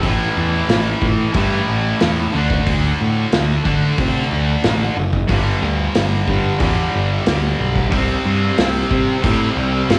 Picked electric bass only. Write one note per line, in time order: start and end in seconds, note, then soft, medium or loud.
0.03 0.28 A1 medium
0.37 0.61 E2 medium
0.69 0.93 A1 medium
1.02 1.26 A2 medium
1.35 1.59 G2 medium
1.68 1.93 A1 medium
2.02 2.26 E2 medium
2.35 2.59 D2 medium
2.67 2.92 D2 medium
3.01 3.25 A2 medium
3.33 3.57 D2 medium
3.66 3.90 D3 medium
3.99 4.23 C3 medium
4.30 4.55 D2 medium
4.64 4.88 A1 medium
4.96 5.21 F#1 medium
5.30 5.54 G1 medium
5.62 5.87 D2 medium
5.95 6.20 G1 medium
6.28 6.53 G2 medium
6.61 6.85 E2 medium
6.94 7.19 G1 medium
7.27 7.52 D2 medium
7.59 7.84 B1 medium
7.92 8.17 C2 medium
8.26 8.50 G2 medium
8.58 8.83 C2 medium
8.91 9.16 C3 medium
9.24 9.49 A2 medium
9.57 9.81 C2 medium
9.89 9.99 G1 medium